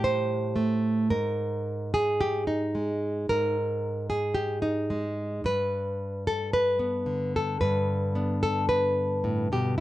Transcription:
0.00 1.11 A2 medium
0.00 1.14 G3 soft
0.00 0.57 G4 loud
0.00 1.10 C5 medium
0.56 1.08 A3 medium
1.10 3.25 G#2 medium
1.10 1.93 A#4 medium
1.94 2.75 G#4 loud
2.21 2.47 G4 loud
2.47 3.56 D#4 medium
2.75 3.26 G#3 medium
3.29 5.42 G#2 medium
3.29 4.09 A#4 loud
4.10 4.91 G#4 loud
4.35 4.62 G4 loud
4.62 5.44 D#4 medium
4.90 5.41 G#3 medium
5.44 7.57 G2 medium
5.44 6.26 B4 loud
6.27 6.53 A4 loud
6.53 7.34 B4 loud
6.79 7.57 B3 soft
7.06 9.78 D3 medium
7.36 7.60 A4 medium
7.61 9.76 G2 medium
7.61 8.42 B4 medium
8.15 9.76 B3 soft
8.15 9.76 D4 soft
8.43 8.68 A4 medium
8.69 9.51 B4 medium
9.24 9.51 A2 medium
9.52 9.79 B2 medium
9.52 9.77 G4 medium

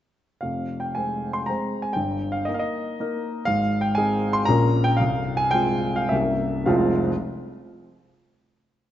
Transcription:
0.41 0.95 F1 soft
0.41 0.95 F2 soft
0.41 0.82 F5 medium
0.80 0.95 G5 medium
0.95 1.45 G#3 soft
0.95 1.45 C4 soft
0.95 1.45 C5 soft
0.95 1.35 G#5 medium
1.33 1.47 C6 medium
1.46 1.93 G#3 soft
1.46 1.93 C4 soft
1.46 1.93 C5 soft
1.46 1.84 A#5 medium
1.82 1.95 G#5 medium
1.93 2.45 G1 soft
1.93 2.45 G2 soft
1.93 2.32 G5 medium
2.32 2.46 F5 medium
2.45 2.95 A#3 soft
2.45 2.95 D#4 soft
2.45 2.95 A#4 soft
2.45 2.53 D#5 medium
2.54 2.61 F5 medium
2.59 3.45 D#5 medium
3.00 3.43 A#3 soft
3.00 3.43 D#4 soft
3.00 3.43 A#4 medium
3.45 3.95 G#1 soft
3.45 3.95 G#2 medium
3.45 3.83 F5 medium
3.81 3.95 G5 medium
3.95 4.44 C4 soft
3.95 4.45 D#4 soft
3.95 4.45 G#4 medium
3.95 4.34 G#5 medium
4.33 4.47 C6 medium
4.45 4.98 A#1 medium
4.45 4.98 A#2 medium
4.45 4.95 A#3 soft
4.45 4.96 C#4 soft
4.45 4.96 F4 soft
4.45 4.85 A#5 loud
4.84 4.98 G5 medium
4.97 5.52 C1 medium
4.97 5.52 C2 medium
4.97 5.38 F5 medium
5.37 5.53 G#5 medium
5.51 6.08 G#3 soft
5.51 6.08 C4 soft
5.51 6.08 F4 medium
5.51 5.96 G5 medium
5.96 6.11 F5 medium
6.09 6.68 C1 medium
6.09 6.65 C2 medium
6.09 6.65 A#3 soft
6.09 6.66 C#4 soft
6.09 6.66 G4 soft
6.09 6.68 E5 medium
6.66 6.99 F1 medium
6.66 6.99 C2 medium
6.66 6.99 F3 medium
6.66 6.99 G#3 medium
6.66 6.99 C4 medium
6.66 7.00 F4 medium
6.66 6.99 F5 medium

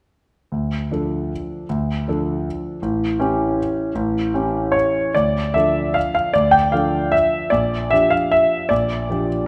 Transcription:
0.52 0.90 D2 soft
0.91 1.66 F3 soft
0.91 1.66 D4 soft
0.91 1.66 A4 soft
1.69 2.06 D2 soft
2.08 2.79 F3 soft
2.08 2.79 D4 soft
2.08 2.80 A4 soft
2.82 3.18 A1 medium
3.19 3.91 E3 soft
3.19 3.91 C#4 soft
3.19 3.92 G4 soft
3.95 4.32 A1 soft
4.34 5.12 E3 soft
4.34 5.12 C#4 soft
4.34 5.12 G4 soft
4.72 5.15 C#5 medium
5.14 5.54 D2 soft
5.14 5.55 D5 medium
5.54 6.31 F3 soft
5.54 6.31 D4 soft
5.54 6.31 A4 soft
5.54 5.95 E5 medium
5.94 6.13 F5 medium
6.15 6.34 F5 medium
6.33 6.72 D2 soft
6.33 6.53 D5 medium
6.51 6.72 G5 medium
6.72 7.49 F3 soft
6.72 7.49 D4 soft
6.72 7.49 A4 soft
6.72 7.13 F5 medium
7.12 7.52 E5 medium
7.50 7.91 A#1 soft
7.50 7.91 D5 medium
7.91 8.67 F3 soft
7.91 8.67 D4 soft
7.91 8.67 G4 soft
7.91 8.12 E5 medium
8.10 8.32 F5 medium
8.31 8.71 E5 medium
8.69 9.08 A#1 soft
8.69 9.28 D5 medium
9.09 9.47 F3 soft
9.09 9.47 D4 soft
9.09 9.47 G4 soft

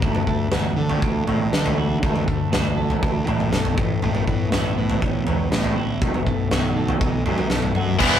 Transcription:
0.00 0.23 D2 medium
0.00 1.25 D3 medium
0.00 1.02 D4 medium
0.00 kick medium
0.00 floor tom medium
0.15 mid tom medium
0.27 0.47 D2 medium
0.27 0.77 A3 medium
0.27 kick medium
0.52 0.72 D2 medium
0.52 1.76 F#4 medium
0.52 snare medium
0.52 floor tom medium
0.76 0.97 D3 medium
0.76 1.52 A3 medium
0.89 floor tom medium
1.02 1.23 D2 medium
1.02 2.28 D4 medium
1.02 kick medium
1.26 1.47 A2 medium
1.26 2.01 D3 medium
1.26 floor tom medium
1.52 1.73 D3 medium
1.52 2.27 A3 medium
1.52 snare medium
1.66 floor tom medium
1.77 1.97 D2 medium
1.77 2.51 F#4 medium
2.03 2.23 D2 medium
2.03 3.26 D3 medium
2.03 kick medium
2.03 floor tom medium
2.16 mid tom medium
2.27 2.48 D2 medium
2.27 2.77 A3 medium
2.27 kick medium
2.52 2.93 D2 medium
2.52 3.78 F#4 medium
2.52 snare medium
2.52 floor tom medium
2.77 3.52 A3 medium
2.90 floor tom medium
3.02 3.23 D2 medium
3.02 3.78 D4 medium
3.02 kick medium
3.27 3.48 A2 medium
3.27 3.78 D3 medium
3.27 floor tom medium
3.40 mid tom medium
3.52 3.72 B1 medium
3.52 4.27 A3 medium
3.52 snare medium
3.52 mid tom medium
3.65 floor tom medium
3.78 3.98 A1 medium
3.78 4.01 A2 medium
3.78 kick medium
3.78 mid tom medium
4.02 4.23 A1 medium
4.02 5.27 A2 medium
4.02 floor tom medium
4.15 mid tom medium
4.27 4.48 A1 medium
4.27 4.77 B3 medium
4.27 kick medium
4.52 4.73 A1 medium
4.52 5.75 E4 medium
4.52 snare medium
4.52 floor tom medium
4.78 4.98 A2 medium
4.78 5.50 B3 medium
4.90 floor tom medium
5.02 5.23 A1 medium
5.02 6.02 C#4 medium
5.02 kick medium
5.27 5.47 E2 medium
5.27 6.02 E3 medium
5.27 floor tom medium
5.51 5.72 A2 medium
5.51 6.02 B3 medium
5.51 snare medium
5.64 floor tom medium
5.76 5.97 A1 medium
5.76 6.02 E4 medium
6.01 6.22 B1 medium
6.01 7.26 B2 medium
6.01 kick loud
6.01 floor tom medium
6.14 mid tom medium
6.26 6.47 B1 medium
6.26 6.75 A3 medium
6.26 kick medium
6.51 6.91 B1 medium
6.51 7.75 F#4 medium
6.51 snare medium
6.51 floor tom medium
6.77 7.50 A3 medium
6.88 floor tom medium
7.01 7.21 B1 medium
7.01 8.01 D#4 medium
7.01 kick loud
7.26 7.46 F#2 medium
7.26 8.01 F#3 medium
7.26 floor tom medium
7.38 mid tom medium
7.50 7.71 B1 medium
7.50 8.01 A3 medium
7.50 snare medium
7.50 mid tom medium
7.62 floor tom medium
7.75 7.95 F#2 medium
7.75 8.01 F#4 medium
7.75 mid tom medium
7.99 8.19 E1 medium
7.99 8.20 E3 loud
7.99 8.20 G3 loud
7.99 8.20 B3 loud
7.99 8.20 E4 medium
7.99 kick loud
7.99 crash loud

